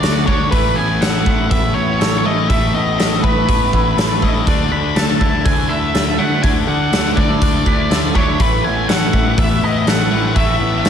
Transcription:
Already playing: D3 A3 D4 D5
0.03 D2 F#4, snare, open hi-hat
0.26 D2 D3 A3 D4 C#5, kick
0.51 A1 A2 E3 A3 B4, kick, open hi-hat
0.76 A1 B3 G#5
1.01 A1 A4 F#5, snare, open hi-hat
1.26 A1 E4, kick
1.51 A1 B3 E5, kick, open hi-hat
1.74 A1 E4 C#5
1.99 A1 A4, snare, open hi-hat
2.18 C#5
2.24 A1 A2 E3 A3 E4 D#5
2.49 A1 A2 E3 A3 E5, kick, open hi-hat
2.74 A1 B3 D#5
2.99 A1 A4, snare, open hi-hat
3.23 A1 E4 B4, kick
3.48 A1 B3, kick, open hi-hat
3.73 A1 E4, kick
3.97 A1 A4, snare, open hi-hat
4.22 A1 A2 E3 A3 E4 D#5, kick
4.47 D2 D3 A3 D4 D5, kick, open hi-hat
4.71 D2 D4 B5
4.96 D2 A4 A5, snare, open hi-hat
5.20 D2 E4, kick
5.45 D2 D4 G#5, kick, open hi-hat
5.69 D2 E4 E5
5.94 D2 A4, snare, open hi-hat
6.18 D2 D3 A3 D4 E4 F#5
6.43 D2 D3 A3 D4 G#5, kick, open hi-hat
6.68 D2 D4 F#5
6.92 D2 A4, snare, open hi-hat
7.17 D2 E4 D5, kick
7.42 D2 D4, kick, open hi-hat
7.66 D2 E4, kick
7.90 D2 A4, snare, open hi-hat
8.15 D2 D3 A3 D4 E4 C#5, kick
8.39 A1 A2 E3 A3 B4, kick, open hi-hat
8.64 A1 B3 G#5
8.89 A1 A4 F#5, snare, open hi-hat
9.13 A1 E4, kick
9.38 A1 B3 E5, kick, open hi-hat
9.62 A1 E4 D#5
9.87 A1 A4 F#5, snare, open hi-hat
10.11 A1 A2 E3 A3 E4
10.35 A1 A2 E3 A3 E5, kick, open hi-hat
10.59 A1 B3
10.84 A1 A4, snare, open hi-hat

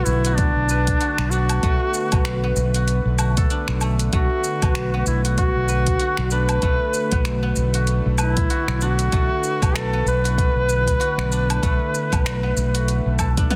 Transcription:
Already playing: D3 A3 B3 D4 F#4 B4
0.05 B1 E4, shaker
0.25 F#4, closed hi-hat, shaker
0.36 D4, kick, closed hi-hat, shaker
0.56 B1
0.69 B4, shaker
0.87 kick, closed hi-hat, shaker
1.01 F#4, closed hi-hat, shaker
1.18 B1, finger snap
1.30 D4 F#4, shaker
1.49 closed hi-hat, low woodblock, shaker
1.63 A3, kick, closed hi-hat, shaker
1.94 shaker
2.12 B1 B3, kick, closed hi-hat, low woodblock, shaker
2.25 finger snap, closed hi-hat, shaker
2.44 B3
2.56 B1, shaker
2.74 F#4, closed hi-hat, shaker
2.88 closed hi-hat, shaker
3.05 B1
3.19 F#4, low woodblock, shaker
3.37 A4, kick, closed hi-hat, shaker
3.50 D4, closed hi-hat, shaker
3.68 B1, finger snap
3.81 A3, low woodblock, shaker
3.99 closed hi-hat, shaker
4.13 B1 A3 F#4 F#5, kick, closed hi-hat, shaker
4.44 shaker
4.62 B1 B3, kick, closed hi-hat, low woodblock, shaker
4.75 finger snap, closed hi-hat, shaker
4.94 B3
5.06 B1 E4, shaker
5.25 F#4, closed hi-hat, shaker
5.38 F#4, kick, closed hi-hat, shaker
5.56 B1
5.68 B4, shaker
5.87 kick, closed hi-hat, shaker
5.99 F#4, closed hi-hat, shaker
6.17 B1, finger snap
6.31 D4 B4, shaker
6.49 closed hi-hat, low woodblock, shaker
6.54 E4
6.62 B1 A3, kick, closed hi-hat, shaker
6.94 shaker
7.12 B1 B3, kick, closed hi-hat, shaker
7.25 finger snap, closed hi-hat, shaker
7.43 B3
7.56 B1, shaker
7.74 F#4, closed hi-hat, shaker
7.87 closed hi-hat, shaker
8.06 B1
8.18 E4 B4, low woodblock, shaker
8.37 kick, closed hi-hat, shaker
8.50 F#4, closed hi-hat, shaker
8.68 B1, finger snap
8.81 D4 F#4, shaker
8.99 closed hi-hat, shaker
9.12 B1 A3, kick, closed hi-hat, shaker
9.44 shaker
9.62 B1 B3, kick, closed hi-hat, low woodblock, shaker
9.76 A4, finger snap, closed hi-hat, shaker
9.93 B3
10.06 B1 B4, shaker
10.24 F#4, closed hi-hat, shaker
10.38 kick, closed hi-hat, shaker
10.55 B1
10.69 B4, shaker
10.87 kick, closed hi-hat, shaker
11.00 F#4, closed hi-hat, shaker
11.18 B1, finger snap
11.32 D4, shaker
11.50 closed hi-hat, low woodblock, shaker
11.63 B1 A3, kick, closed hi-hat, shaker
11.95 shaker
12.12 B1 B3, kick, closed hi-hat, low woodblock, shaker
12.26 finger snap, closed hi-hat, shaker
12.43 B3
12.57 B1, shaker
12.74 F#4, closed hi-hat, shaker
12.88 closed hi-hat, shaker
13.06 B1
13.19 A4, kick, low woodblock, shaker
13.37 D4, kick, closed hi-hat, shaker
13.51 B3, closed hi-hat, high tom, shaker

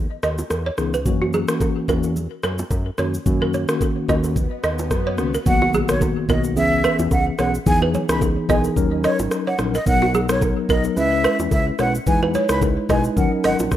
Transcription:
0.23 D#2 D#5, cross-stick, shaker
0.38 low bongo, shaker
0.50 E2, cross-stick, high bongo, shaker
0.66 C#5
0.78 C#2 E3 B3 D#4 G#4, cross-stick, shaker
0.94 B4, shaker
1.05 F#2 E3 A#3 C#4 F#4, kick, low conga, shaker
1.22 F#4
1.33 G#4, low conga, shaker
1.48 E3 A#3 C#4 F#4, cross-stick, shaker
1.61 kick, high bongo, shaker
1.88 E2 E3 A#3 C#4 F#4 A#4, kick, high bongo, low bongo, shaker
2.03 high bongo, shaker
2.16 low conga, shaker
2.43 F#2 A#4, cross-stick, shaker
2.58 low bongo, shaker
2.71 F#2, kick, high bongo, shaker
2.98 F#2 D#3 A#3 C#4 F#4 C#5, cross-stick, shaker
3.14 shaker
3.26 F#2 D#3 A#3 C#4 F#4, kick, swell, low conga, shaker
3.42 A#4
3.54 C#5, low conga, shaker
3.68 D#3 A#3 C#4 F#4, cross-stick, shaker
3.81 kick, high bongo, shaker
4.08 D#2 D#3 A#3 C#4 F#4 D#5, kick, cross-stick, high bongo, low bongo, shaker
4.24 high bongo, shaker
4.36 kick, low conga, shaker
4.63 D#2 D#5, cross-stick, shaker
4.79 low bongo, shaker
4.91 F#2, kick, cross-stick, high bongo, shaker
5.07 C#5
5.18 C#2 D#3 A#3 C#4 F#4, cross-stick, shaker
5.34 A#4, shaker
5.46 B1 D#3 A#3 B3 F#4 F#5, kick, impact, low conga, shaker
5.62 F#4, low bongo
5.74 G#4, low conga, shaker
5.88 D#3 A#3 B3 F#4 C#5, cross-stick, shaker
6.01 kick, high bongo, shaker
6.29 B1 D#3 A#3 B3 F#4 A#4 D#5, kick, low bongo, shaker
6.44 high bongo, shaker
6.56 C#2 E3 B3 C#4 G#4 E5, low conga, shaker
6.84 B4, cross-stick, shaker
6.99 E2, low bongo, shaker
7.11 C#2 F#5, kick, high bongo, shaker
7.38 B1 E3 B3 C#4 G#4 C#5 F#5, cross-stick, low bongo, shaker
7.54 shaker
7.66 E2 E3 B3 D#4 G#4 G#5, kick, low conga, shaker
7.82 B4, low bongo
7.94 C#5, low conga, shaker
8.09 C#2 E3 B3 D#4 G#4 B5, cross-stick, shaker
8.21 kick, high bongo, shaker
8.49 B1 E3 B3 D#4 G#4 D#5 G#5, kick, cross-stick, low bongo, shaker
8.64 high bongo, shaker
8.76 D#2 F#3 C#4 D#4 A#4, kick, low conga, shaker
9.04 C#5 D#5, cross-stick, shaker
9.19 G#1, low bongo, shaker
9.31 cross-stick, high bongo, shaker
9.47 C#5 F#5
9.59 A#1 F#3 C#4 D#4 A#4, cross-stick, low bongo, shaker
9.75 A#4 D#5, shaker
9.86 B1 F#3 B3 D#4 A#4 F#5, kick, low conga, shaker
10.02 F#4, low bongo
10.14 G#4, low conga, shaker
10.29 F#3 B3 D#4 A#4 C#5, cross-stick, shaker
10.41 kick, high bongo, shaker
10.69 B1 F#3 B3 D#4 A#4 D#5, kick, low bongo, shaker
10.84 high bongo, shaker
10.96 C#2 G#3 C#4 E4 B4 E5, low conga, shaker
11.24 B4, cross-stick, shaker
11.39 E2, low bongo, shaker
11.51 C#2 E5, kick, high bongo, shaker
11.79 B1 G#3 C#4 E4 B4 C#5 F#5, cross-stick, low bongo, shaker
11.95 shaker
12.07 E2 G#3 D#4 E4 B4 G#5, kick, low conga, shaker
12.22 B4, low bongo
12.34 C#5, low conga, shaker
12.49 C#2 G#3 D#4 E4 B4 B5, cross-stick, shaker
12.62 kick, high bongo, shaker
12.89 B1 G#3 D#4 E4 B4 D#5 G#5, kick, cross-stick, high bongo, low bongo, shaker
13.04 shaker
13.16 D#2 F#3 C#4 D#4 A#4 F#5, kick, low conga, shaker
13.44 G#1 D#5 F#5, cross-stick, open hi-hat, shaker
13.59 A#1, low bongo, shaker
13.71 kick, cross-stick, high bongo, shaker

